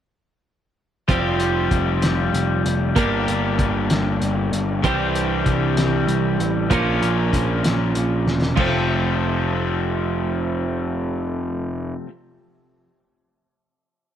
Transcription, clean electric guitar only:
1.08 2.94 F3 medium
1.08 2.94 C4 medium
1.08 2.95 F4 medium
1.08 2.98 G4 medium
2.96 4.81 A#3 medium
2.96 4.82 D4 medium
2.96 4.82 G4 medium
4.84 6.69 E3 medium
4.84 6.69 C4 medium
4.84 6.70 D4 medium
4.84 6.70 G4 medium
6.70 8.55 F3 medium
6.70 8.56 A#3 medium
6.70 8.57 C#4 medium
8.56 12.06 F3 medium
8.56 12.08 A3 medium
8.56 12.10 C4 medium

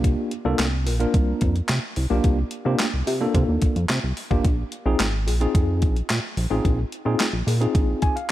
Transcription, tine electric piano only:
0.00 0.31 A#3 medium
0.00 0.31 D4 medium
0.00 0.32 F4 medium
0.00 0.32 G4 loud
0.45 0.65 A#3 medium
0.45 0.65 D4 medium
0.45 0.66 F4 medium
0.45 0.66 A4 loud
0.86 0.93 F4 medium
0.86 0.93 A#4 loud
1.00 1.54 A#3 medium
1.00 1.54 D4 medium
1.00 1.54 F4 medium
1.00 1.54 A#4 medium
2.10 2.37 A#3 medium
2.10 2.37 D4 medium
2.10 2.38 F4 medium
2.10 2.38 G4 medium
2.65 2.86 A#3 medium
2.65 2.86 D4 medium
2.65 2.86 F4 medium
2.65 2.86 G4 loud
3.06 3.13 F4 medium
3.06 3.14 G4 loud
3.21 3.75 A#3 medium
3.21 3.75 D4 medium
3.21 3.75 F4 medium
3.21 3.75 A4 medium
4.31 4.44 A#3 medium
4.31 4.45 D4 medium
4.31 4.45 F4 medium
4.31 4.45 G4 loud
4.86 5.06 C4 medium
4.86 5.06 D#4 medium
4.86 5.06 F4 medium
4.86 5.06 G#4 loud
5.27 5.34 F4 medium
5.27 5.34 G#4 loud
5.41 5.95 C4 medium
5.41 5.95 D#4 medium
5.41 5.95 F4 medium
5.41 5.95 G#4 medium
6.50 6.78 C4 medium
6.50 6.78 D#4 medium
6.50 6.78 F4 medium
6.50 6.78 G#4 loud
7.05 7.26 C4 medium
7.05 7.26 D#4 medium
7.05 7.26 F4 medium
7.05 7.26 G#4 loud
7.47 7.54 F4 medium
7.47 7.54 G#4 loud
7.61 8.15 C4 medium
7.61 8.15 D#4 medium
7.61 8.15 F4 medium
7.61 8.15 G#4 medium
8.02 8.15 G#5 medium
8.16 8.29 F5 medium

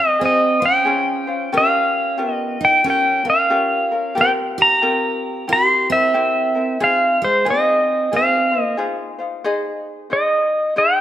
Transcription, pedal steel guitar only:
0.00 0.23 D#5 medium
0.25 0.65 D#5 medium
0.66 1.57 G5 medium
1.58 2.34 F5 medium
2.34 2.64 D#5 medium
2.65 2.88 G5 loud
2.90 3.29 G5 medium
3.30 4.21 F5 medium
4.21 4.31 G5 loud
4.62 5.52 A#5 loud
5.53 5.89 C6 loud
5.92 6.83 E5 loud
6.84 7.24 F5 medium
7.24 7.46 C5 medium
7.50 8.16 D#5 medium
8.16 8.61 F5 medium
8.61 8.77 D#5 medium
10.13 10.74 D#5 medium
10.78 11.01 G5 medium

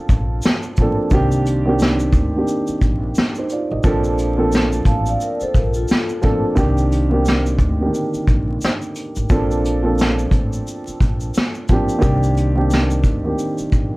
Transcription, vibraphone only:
4.86 5.06 F5 medium
4.86 5.06 A5 medium
5.09 5.21 D5 medium
5.09 5.21 F5 medium
5.23 5.41 A#4 medium
5.23 5.41 D5 medium
5.42 5.55 A4 medium
5.42 5.55 C5 medium
5.55 5.74 A#4 medium
5.75 6.54 F4 medium
5.75 6.53 A4 medium

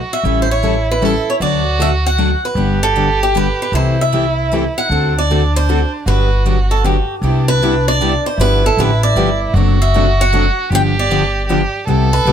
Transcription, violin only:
0.00 0.26 F#4 medium
0.24 1.43 E4 medium
1.41 2.43 F#4 medium
2.57 3.76 G4 medium
3.75 4.92 E4 medium
4.90 6.07 D4 medium
6.06 7.08 F#4 medium
7.22 8.35 D4 medium
8.38 9.55 E4 medium
9.53 10.71 F#4 loud
10.70 11.47 G4 loud
11.47 11.84 G4 medium
11.88 12.32 A4 loud

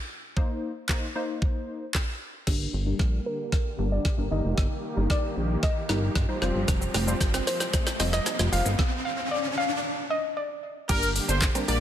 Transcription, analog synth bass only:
2.47 2.68 G1 loud
2.73 2.94 G1 loud
2.99 3.20 A#1 loud
3.79 3.99 G1 medium
4.18 4.28 G1 medium
4.31 4.42 G1 loud
4.44 4.55 F1 medium
4.58 4.68 G1 loud
4.97 5.07 G1 medium
5.37 5.57 A#1 medium
5.89 6.10 G1 medium
6.16 6.26 G2 medium
6.42 6.52 F1 loud
6.55 6.65 G1 loud
6.68 6.89 F1 loud
6.95 7.15 F1 loud
7.21 7.41 G1 medium
8.00 8.20 F1 medium
8.39 8.49 F1 medium
8.52 8.63 F1 loud
8.66 8.76 G1 medium
10.89 11.20 G1 loud
11.29 11.49 G1 loud
11.68 11.80 A#1 loud

